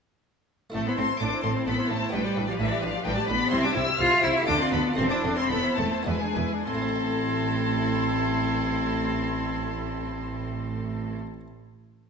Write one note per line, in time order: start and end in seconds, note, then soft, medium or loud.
0.70 2.07 A3 soft
0.70 2.08 E4 soft
0.70 2.09 E5 medium
0.70 0.85 A5 medium
0.74 0.83 A1 medium
0.74 0.82 A2 medium
0.74 0.95 A2 medium
0.74 0.85 A3 loud
0.74 0.86 C4 medium
0.74 0.85 A4 medium
0.87 0.91 B3 medium
0.87 0.98 E4 medium
0.87 0.98 C5 medium
0.87 0.91 B5 medium
0.97 1.06 A1 medium
0.97 1.06 A2 medium
0.97 1.19 A2 medium
0.97 1.05 C4 medium
0.97 1.10 C4 medium
0.97 1.10 A4 medium
0.97 1.21 C6 loud
1.10 1.21 E4 medium
1.10 1.21 C5 medium
1.20 1.29 A1 medium
1.20 1.29 A2 medium
1.20 1.42 A2 medium
1.20 1.32 C4 medium
1.20 1.43 D4 medium
1.20 1.32 A4 medium
1.20 1.44 D6 loud
1.31 1.44 E4 medium
1.31 1.43 C5 medium
1.43 1.53 A1 medium
1.43 1.52 A2 medium
1.43 1.65 A2 medium
1.43 1.68 C4 medium
1.43 1.56 C4 medium
1.43 1.55 A4 medium
1.43 1.51 C6 medium
1.54 1.67 E4 medium
1.54 1.67 C5 medium
1.66 1.75 A1 medium
1.66 1.74 A2 medium
1.66 1.88 A2 medium
1.66 1.93 B3 medium
1.66 1.78 C4 medium
1.66 1.77 A4 medium
1.66 1.90 B5 loud
1.77 1.91 E4 medium
1.77 1.90 C5 medium
1.88 1.99 A1 medium
1.88 1.98 A2 medium
1.88 2.11 A2 medium
1.88 2.15 A3 medium
1.88 2.02 C4 medium
1.88 2.01 A4 medium
1.88 2.13 A5 loud
1.98 2.11 C5 medium
2.02 2.14 E4 medium
2.09 2.21 A2 medium
2.09 3.46 B3 medium
2.09 2.24 D4 medium
2.09 3.46 G4 medium
2.09 2.22 B4 medium
2.09 3.47 D5 medium
2.09 2.47 G5 medium
2.13 2.21 A1 medium
2.13 2.34 A2 medium
2.13 2.48 G3 loud
2.23 2.36 G4 medium
2.23 2.35 D5 medium
2.34 2.45 A1 medium
2.34 2.44 A2 medium
2.34 2.58 A2 medium
2.34 2.48 D4 medium
2.34 2.47 B4 medium
2.46 2.59 F3 medium
2.46 2.60 G4 medium
2.46 2.58 D5 medium
2.46 2.53 F5 medium
2.56 2.68 A1 medium
2.56 2.67 A2 medium
2.56 2.85 E3 medium
2.56 2.70 D4 medium
2.56 2.68 B4 medium
2.56 2.82 E5 loud
2.60 2.81 A2 medium
2.67 2.82 G4 medium
2.67 2.81 D5 medium
2.80 2.91 A1 medium
2.80 2.90 A2 medium
2.80 3.04 A2 medium
2.80 3.08 F3 medium
2.80 2.93 D4 medium
2.80 2.93 B4 medium
2.80 3.05 F5 loud
2.91 3.05 G4 medium
2.91 3.04 D5 medium
3.03 3.14 A1 medium
3.03 3.13 A2 medium
3.03 3.26 A2 medium
3.03 3.19 G3 medium
3.03 3.16 D4 medium
3.03 3.15 B4 medium
3.03 3.16 G5 loud
3.13 3.28 G4 medium
3.13 3.27 D5 medium
3.13 3.28 A5 loud
3.17 3.29 A3 medium
3.26 3.37 A1 medium
3.26 3.37 A2 medium
3.26 3.50 A2 medium
3.26 3.40 D4 medium
3.26 3.39 B4 medium
3.26 3.51 B5 loud
3.30 3.55 B3 loud
3.38 3.51 G4 medium
3.38 3.51 D5 medium
3.47 4.42 C4 medium
3.47 4.43 G4 medium
3.47 3.61 C5 medium
3.47 4.44 E5 medium
3.47 3.63 C6 loud
3.51 3.60 C2 medium
3.51 3.72 C3 medium
3.51 3.60 C3 medium
3.51 3.66 C4 loud
3.51 3.62 E4 medium
3.60 3.75 G4 medium
3.60 3.73 E5 medium
3.60 3.75 D6 loud
3.64 3.74 D4 medium
3.72 3.84 C2 medium
3.72 3.96 C3 medium
3.72 3.83 C3 medium
3.72 3.83 E4 medium
3.72 3.87 E4 medium
3.72 3.86 C5 medium
3.72 3.98 E6 loud
3.86 3.99 G4 medium
3.86 3.98 E5 medium
3.98 4.07 C2 medium
3.98 4.20 C3 medium
3.98 4.07 C3 medium
3.98 4.10 E4 medium
3.98 4.25 F4 loud
3.98 4.09 C5 medium
3.98 4.22 F6 loud
4.10 4.23 G4 medium
4.10 4.23 E5 medium
4.22 4.31 C2 medium
4.22 4.31 C3 medium
4.22 4.45 C3 medium
4.22 4.47 E4 loud
4.22 4.35 E4 medium
4.22 4.35 C5 medium
4.22 4.31 E6 loud
4.35 4.48 G4 medium
4.35 4.47 E5 medium
4.42 4.92 A3 medium
4.42 4.94 F4 medium
4.42 4.95 F5 medium
4.47 4.56 D2 medium
4.47 4.70 D3 medium
4.47 4.56 D3 medium
4.47 4.58 D4 medium
4.47 4.59 D4 medium
4.47 4.59 A4 medium
4.47 4.59 D6 loud
4.59 4.73 C4 medium
4.59 4.73 F4 medium
4.59 4.72 D5 medium
4.59 4.73 C6 loud
4.72 4.81 D2 medium
4.72 4.95 D3 medium
4.72 4.81 D3 medium
4.72 4.96 B3 loud
4.72 4.85 D4 medium
4.72 4.85 A4 medium
4.72 4.81 B5 loud
4.84 4.98 F4 medium
4.84 4.97 D5 medium
4.94 6.01 A3 medium
4.94 5.09 C4 loud
4.94 5.10 C4 medium
4.94 6.02 E4 medium
4.94 6.03 C5 medium
4.94 5.02 C6 loud
4.98 5.06 E1 loud
4.98 5.21 E2 medium
4.98 5.06 E2 medium
4.98 5.10 A4 medium
5.10 5.38 D4 medium
5.10 5.23 E4 medium
5.10 5.24 C5 medium
5.10 5.18 D6 loud
5.23 5.32 E1 medium
5.23 5.32 E2 medium
5.23 5.48 E2 medium
5.23 5.37 C4 medium
5.23 5.37 A4 medium
5.36 5.51 C4 medium
5.36 5.50 E4 medium
5.36 5.50 C5 medium
5.36 5.51 C6 loud
5.49 5.59 E1 medium
5.49 5.59 E2 medium
5.49 5.76 E2 medium
5.49 5.79 B3 medium
5.49 5.63 C4 medium
5.49 5.63 A4 medium
5.49 5.77 B5 loud
5.62 5.78 E4 medium
5.62 5.77 C5 medium
5.76 5.87 E1 medium
5.76 5.86 E2 medium
5.76 6.04 E2 medium
5.76 6.05 A3 medium
5.76 5.92 C4 medium
5.76 5.92 A4 medium
5.76 6.05 A5 loud
5.91 6.05 E4 medium
5.91 6.06 C5 medium
6.03 6.15 E2 medium
6.03 6.66 G#3 medium
6.03 6.63 B3 medium
6.03 6.64 E4 medium
6.03 6.20 E4 medium
6.03 6.20 B4 medium
6.03 6.65 D5 medium
6.03 6.65 G#5 loud
6.07 6.15 E1 medium
6.07 6.34 E2 medium
6.21 6.37 D4 medium
6.21 6.36 G#4 medium
6.35 6.45 E1 medium
6.35 6.44 E2 medium
6.35 6.64 E2 medium
6.35 6.52 E4 medium
6.35 6.51 B4 medium
6.51 6.67 D4 medium
6.51 6.67 G#4 medium
6.66 11.16 A1 medium
6.66 11.15 A2 medium
6.66 11.19 A2 medium
6.66 11.16 C4 medium
6.66 11.16 E4 medium
6.66 11.15 A4 medium
6.66 11.15 C6 medium
6.75 11.26 A3 medium
6.82 11.33 C4 medium
6.89 11.40 E4 medium
6.96 11.47 E5 medium